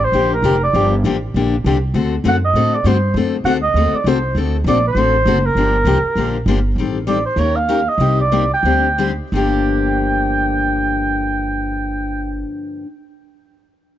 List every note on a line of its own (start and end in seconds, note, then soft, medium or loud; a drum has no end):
0.00 0.11 A1 medium
0.05 0.33 C5 loud
0.12 0.42 A#1 medium
0.12 0.33 D3 medium
0.12 0.33 F3 medium
0.12 0.33 A#3 medium
0.12 0.34 D4 medium
0.12 0.34 G4 medium
0.34 0.61 A#4 medium
0.42 0.73 F1 medium
0.42 0.55 D3 medium
0.42 0.55 F3 medium
0.42 0.55 A#3 medium
0.42 0.55 D4 medium
0.42 0.55 G4 loud
0.64 0.91 D5 medium
0.73 1.03 G1 medium
0.73 0.94 D3 medium
0.73 0.94 F3 medium
0.73 0.94 A#3 medium
0.73 0.94 D4 medium
0.73 0.94 G4 medium
1.04 1.34 A1 medium
1.04 1.15 D3 medium
1.04 1.16 F3 medium
1.04 1.16 A#3 medium
1.04 1.16 D4 medium
1.04 1.16 G4 medium
1.34 1.64 A#1 medium
1.34 1.55 D3 medium
1.34 1.55 F3 medium
1.34 1.55 A#3 medium
1.34 1.55 D4 medium
1.34 1.55 G4 medium
1.64 1.93 C2 medium
1.64 1.76 D3 medium
1.64 1.76 F3 medium
1.64 1.76 A#3 medium
1.64 1.77 D4 medium
1.64 1.77 G4 medium
1.94 2.23 D2 medium
1.94 2.14 D3 medium
1.94 2.14 A3 medium
1.94 2.15 C4 medium
1.94 2.15 F#4 medium
1.94 2.15 A4 medium
2.24 2.53 F#2 medium
2.24 2.36 D3 medium
2.24 2.36 A3 medium
2.24 2.36 C4 medium
2.24 2.36 F#4 medium
2.24 2.36 A4 medium
2.29 2.36 F#5 loud
2.45 2.76 D#5 loud
2.54 2.84 A2 medium
2.54 2.75 D3 medium
2.54 2.75 A3 medium
2.54 2.75 C4 medium
2.54 2.75 F#4 medium
2.54 2.75 A4 medium
2.74 2.89 D5 medium
2.84 3.13 G2 medium
2.84 2.96 D3 medium
2.84 2.96 A3 medium
2.84 2.96 C4 medium
2.84 2.97 F#4 medium
2.84 2.97 A4 medium
2.84 3.17 C5 medium
3.14 3.43 F#2 medium
3.14 3.35 D3 medium
3.14 3.36 A3 medium
3.14 3.36 C4 medium
3.14 3.36 F#4 medium
3.14 3.36 A4 medium
3.44 3.73 D2 medium
3.44 3.56 D3 medium
3.44 3.56 A3 medium
3.44 3.57 C4 medium
3.44 3.57 F#4 medium
3.44 3.57 A4 medium
3.44 3.53 F#5 medium
3.63 3.97 D#5 loud
3.74 3.91 D#2 medium
3.74 3.95 D3 medium
3.74 3.96 A3 medium
3.74 3.95 C4 medium
3.74 3.96 F#4 medium
3.74 3.96 A4 medium
3.95 4.10 D5 medium
4.04 4.34 C2 medium
4.04 4.17 D3 medium
4.04 4.17 A3 medium
4.04 4.17 C4 medium
4.04 4.17 F#4 medium
4.04 4.18 A4 medium
4.09 4.37 C5 medium
4.35 4.64 D2 medium
4.35 4.55 D3 medium
4.35 4.56 A3 medium
4.35 4.56 C4 medium
4.35 4.56 F#4 medium
4.35 4.56 A4 medium
4.64 4.94 A#1 medium
4.64 4.77 D3 medium
4.64 4.77 A3 medium
4.64 4.78 C4 medium
4.64 4.77 F#4 medium
4.64 4.78 A4 medium
4.69 4.84 D5 loud
4.88 5.47 C5 loud
4.95 5.25 A1 medium
4.95 5.15 D3 medium
4.95 5.16 A3 medium
4.95 5.16 C4 medium
4.95 5.16 F#4 medium
4.95 5.16 A4 medium
5.25 5.54 F#1 medium
5.25 5.37 D3 medium
5.25 5.37 A3 medium
5.25 5.37 C4 medium
5.25 5.38 F#4 medium
5.25 5.38 A4 medium
5.46 6.48 A#4 medium
5.55 5.84 G1 medium
5.55 5.76 D3 medium
5.55 5.76 F3 medium
5.55 5.76 A#3 medium
5.55 5.76 D4 medium
5.55 5.76 G4 medium
5.85 6.02 C2 medium
5.85 5.96 D3 medium
5.85 5.97 F3 medium
5.85 5.97 A#3 medium
5.85 5.97 D4 medium
5.85 5.97 G4 loud
6.03 muted upright bass stroke soft
6.15 6.45 A#1 medium
6.15 6.36 D3 medium
6.15 6.36 F3 medium
6.15 6.36 A#3 medium
6.15 6.37 D4 medium
6.15 6.37 G4 medium
6.46 6.75 G1 medium
6.46 6.58 D3 medium
6.46 6.58 F3 medium
6.46 6.58 A#3 medium
6.46 6.58 D4 medium
6.46 6.58 G4 loud
6.76 7.24 A1 medium
6.76 6.97 D#3 medium
6.76 6.97 G3 medium
6.76 6.97 C4 medium
6.80 6.97 G4 medium
6.80 6.97 A4 medium
7.07 7.18 D#3 medium
7.07 7.18 G3 medium
7.07 7.18 C4 medium
7.07 7.18 G4 medium
7.07 7.18 A4 medium
7.07 7.24 D5 medium
7.26 7.41 C5 medium
7.36 7.86 D#2 medium
7.36 7.57 D#3 medium
7.36 7.57 A#3 medium
7.36 7.57 C#4 medium
7.36 7.57 G4 medium
7.36 7.58 A#4 medium
7.36 7.58 C#5 medium
7.56 7.90 F5 medium
7.69 7.79 D#3 medium
7.69 7.79 A#3 medium
7.69 7.79 C#4 medium
7.69 7.80 G4 medium
7.69 7.80 A#4 medium
7.89 8.19 D#5 medium
7.98 8.50 C2 medium
7.98 8.20 C3 medium
7.98 8.20 G3 medium
7.98 8.20 A#3 medium
7.98 8.20 D#4 medium
7.98 8.21 G4 medium
8.21 8.50 D5 medium
8.32 8.43 C3 medium
8.32 8.43 G3 medium
8.32 8.43 A#3 medium
8.32 8.44 D#4 medium
8.32 8.44 G4 medium
8.54 9.16 G5 loud
8.63 9.18 D2 medium
8.63 8.86 D3 medium
8.63 8.86 G3 medium
8.63 8.86 C4 medium
8.63 8.87 D4 medium
8.63 8.87 G4 medium
8.98 9.10 D3 medium
8.98 9.10 G3 medium
8.98 9.11 C4 medium
8.98 9.11 D4 medium
8.98 9.11 G4 medium
9.32 12.42 G1 medium
9.32 12.83 G2 medium
9.32 12.84 D3 medium
9.32 12.85 F3 medium
9.32 12.86 A#3 medium
9.32 12.44 G5 medium
9.36 12.86 D4 medium
9.36 12.87 G4 medium